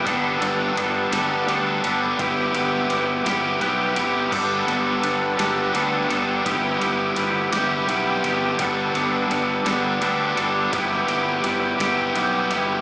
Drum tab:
CC |------|------|x-----|------|
RD |xxxxxx|xxxxxx|-xxxxx|xxxxxx|
SD |---o--|---o--|---o--|---o--|
BD |o-----|o--o--|o-----|o-----|

CC |------|------|
RD |xxxxxx|xxxxxx|
SD |---o--|---o--|
BD |o-----|o--o--|